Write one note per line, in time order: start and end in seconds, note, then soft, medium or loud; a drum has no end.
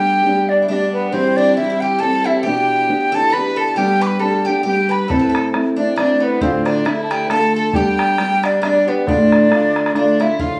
0.00 0.24 G3 medium
0.00 0.24 B3 medium
0.00 0.25 D4 medium
0.00 0.26 G4 medium
0.00 0.51 G4 medium
0.00 0.58 G4 medium
0.00 0.50 G5 loud
0.24 0.68 G3 medium
0.24 0.68 B3 medium
0.24 0.69 D4 medium
0.24 0.71 G4 medium
0.49 0.68 D4 medium
0.49 0.68 D5 medium
0.62 0.68 E4 soft
0.68 1.12 G3 medium
0.68 1.13 B3 medium
0.68 1.09 D4 medium
0.68 0.92 D4 medium
0.68 1.13 D4 medium
0.68 1.14 G4 medium
0.68 0.74 E5 medium
0.73 0.92 D5 medium
0.93 1.14 B3 medium
0.93 1.11 B4 medium
1.11 1.56 C3 medium
1.11 1.56 E3 medium
1.11 1.57 G3 medium
1.11 1.37 C4 medium
1.11 1.35 C4 medium
1.11 1.57 C4 medium
1.11 1.59 G4 medium
1.11 1.38 C5 medium
1.36 1.55 D4 medium
1.36 1.55 D5 loud
1.56 1.98 E3 medium
1.56 2.01 G3 medium
1.56 2.01 C4 medium
1.56 1.83 E4 medium
1.56 1.63 E4 medium
1.56 2.02 G4 medium
1.56 1.82 E5 medium
1.64 1.69 E4 medium
1.70 1.82 E4 medium
1.80 2.02 G4 medium
1.80 1.98 G4 medium
1.80 2.01 G5 medium
1.99 2.25 E3 medium
1.99 2.26 G3 soft
1.99 2.25 C4 medium
1.99 2.23 A4 medium
1.99 2.27 A4 medium
1.99 2.27 A5 loud
2.03 2.24 G4 medium
2.24 2.46 G3 soft
2.24 2.45 C4 soft
2.24 2.43 E4 medium
2.24 2.40 E4 medium
2.24 2.44 G4 medium
2.24 2.44 E5 medium
2.39 2.47 A4 medium
2.43 2.89 E2 medium
2.43 2.89 B2 medium
2.43 2.87 E3 medium
2.43 2.89 B3 medium
2.43 3.12 G4 loud
2.43 3.16 G4 medium
2.43 3.17 G5 loud
2.47 2.90 D4 medium
2.47 2.90 G4 medium
2.89 3.13 E3 medium
2.89 3.14 B3 medium
2.89 3.13 D4 medium
2.89 3.12 G4 medium
3.12 3.32 E3 soft
3.12 3.34 B3 soft
3.12 3.33 D4 soft
3.12 3.33 G4 soft
3.12 3.30 A4 loud
3.12 3.35 A4 medium
3.12 3.34 A5 loud
3.30 3.77 E3 medium
3.30 3.56 B4 medium
3.30 3.58 B4 loud
3.30 3.58 B5 loud
3.35 3.77 B3 medium
3.35 3.77 D4 soft
3.35 3.77 G4 medium
3.56 3.75 A4 medium
3.56 3.79 A5 loud
3.75 4.19 G3 medium
3.75 4.20 B3 medium
3.75 4.21 D4 medium
3.75 4.01 G4 medium
3.75 3.99 G4 medium
3.75 4.22 G4 medium
3.75 4.04 G5 loud
4.00 4.21 B4 medium
4.00 4.19 B4 loud
4.00 4.08 D6 medium
4.07 4.23 B5 loud
4.19 4.45 G3 medium
4.19 4.46 B3 medium
4.19 4.46 D4 medium
4.19 4.46 G4 medium
4.19 4.46 A4 medium
4.19 4.44 A4 medium
4.19 4.48 A5 medium
4.45 4.66 D4 soft
4.45 4.62 G4 medium
4.45 4.63 G4 medium
4.45 4.66 G4 soft
4.45 4.65 G5 medium
4.49 4.65 B3 soft
4.63 5.09 G3 medium
4.63 5.10 B3 medium
4.63 5.10 D4 medium
4.63 4.87 G4 medium
4.63 4.92 G4 medium
4.63 4.93 G5 loud
4.67 5.10 G4 medium
4.89 5.07 B4 medium
4.89 5.12 B4 medium
4.89 5.11 B5 medium
5.08 5.53 A2 medium
5.08 5.52 E3 medium
5.08 5.55 A3 medium
5.08 5.52 C4 medium
5.08 5.54 E4 medium
5.08 5.18 A4 medium
5.08 5.22 A4 medium
5.08 5.49 A5 medium
5.08 bodhran medium
5.19 5.28 A4 medium
5.19 5.33 B4 medium
5.29 5.47 A4 medium
5.29 5.49 A4 medium
5.35 bodhran medium
5.53 5.78 E3 medium
5.53 5.79 A3 medium
5.53 5.78 C4 medium
5.53 5.78 E4 medium
5.53 bodhran medium
5.77 5.98 A3 soft
5.77 5.95 D4 medium
5.77 5.98 E4 soft
5.77 5.96 D5 medium
5.81 5.97 C4 soft
5.96 6.42 E3 medium
5.96 6.40 A3 medium
5.96 6.41 C4 medium
5.96 6.20 D4 medium
5.96 6.25 D5 medium
5.96 bodhran medium
6.01 6.42 E4 medium
6.20 6.39 B3 medium
6.20 6.43 B3 medium
6.20 6.43 B4 medium
6.41 6.85 D2 medium
6.41 6.85 A2 medium
6.41 6.85 D3 medium
6.41 6.85 A3 medium
6.41 6.65 C4 medium
6.41 6.66 C4 medium
6.41 6.87 D4 medium
6.41 6.86 F4 medium
6.41 6.68 C5 medium
6.41 bodhran medium
6.65 6.84 D4 medium
6.65 6.88 D4 medium
6.65 6.88 D5 medium
6.65 bodhran medium
6.85 7.28 D3 medium
6.85 7.28 A3 medium
6.85 7.30 D4 medium
6.85 7.08 E4 medium
6.85 7.28 E4 medium
6.85 7.03 E5 medium
6.85 bodhran medium
7.03 7.13 A5 medium
7.11 7.29 G4 medium
7.11 7.30 G5 loud
7.11 bodhran medium
7.26 7.74 D3 medium
7.26 7.74 A3 medium
7.26 7.55 A4 medium
7.26 7.31 B4 medium
7.26 bodhran medium
7.30 7.75 D4 medium
7.30 7.75 F4 medium
7.30 7.53 A4 loud
7.30 7.54 A5 loud
7.56 7.75 A4 medium
7.56 7.77 A5 medium
7.73 8.18 G3 medium
7.73 8.18 B3 medium
7.73 8.21 D4 medium
7.73 8.45 G4 medium
7.73 8.19 G4 medium
7.73 8.40 G4 loud
7.73 8.47 G5 loud
7.73 bodhran medium
7.99 bodhran medium
8.18 8.61 G3 medium
8.18 8.62 B3 medium
8.18 8.64 D4 medium
8.18 8.64 G4 medium
8.18 bodhran medium
8.43 8.60 D4 medium
8.43 8.62 D4 medium
8.43 8.63 D5 medium
8.43 bodhran medium
8.62 8.87 G3 medium
8.62 8.88 B3 soft
8.62 8.85 D4 medium
8.62 8.88 D4 medium
8.62 8.86 G4 medium
8.62 8.68 E5 medium
8.62 bodhran medium
8.67 8.90 D5 medium
8.87 9.08 B3 medium
8.87 9.05 B3 medium
8.87 9.07 B3 soft
8.87 9.06 D4 soft
8.87 9.06 G4 medium
8.87 9.09 B4 medium
9.06 9.50 D2 medium
9.06 9.51 A2 medium
9.06 9.49 D3 medium
9.06 9.50 A3 medium
9.06 9.94 D4 medium
9.06 9.51 D4 medium
9.06 9.92 D4 medium
9.06 9.51 F4 medium
9.06 9.95 D5 medium
9.06 bodhran medium
9.32 bodhran medium
9.49 9.93 D3 medium
9.49 9.93 A3 medium
9.49 9.95 D4 medium
9.49 9.95 F4 medium
9.49 bodhran medium
9.76 bodhran medium
9.86 bodhran medium
9.93 10.19 D3 medium
9.93 10.19 A3 medium
9.93 10.22 D4 medium
9.93 10.19 D4 medium
9.93 10.18 D4 medium
9.93 10.18 F4 medium
9.93 10.23 D5 medium
9.93 bodhran soft
10.19 10.38 D3 soft
10.19 10.38 A3 soft
10.19 10.39 D4 medium
10.19 10.38 E4 medium
10.19 10.42 E4 medium
10.19 10.39 F4 medium
10.19 10.41 E5 medium
10.19 bodhran soft
10.39 10.60 D2 medium
10.39 10.60 A2 medium
10.39 10.60 D3 medium
10.39 10.60 A3 medium
10.39 10.60 D4 medium
10.39 10.60 F4 medium
10.39 10.60 F5 loud
10.39 bodhran medium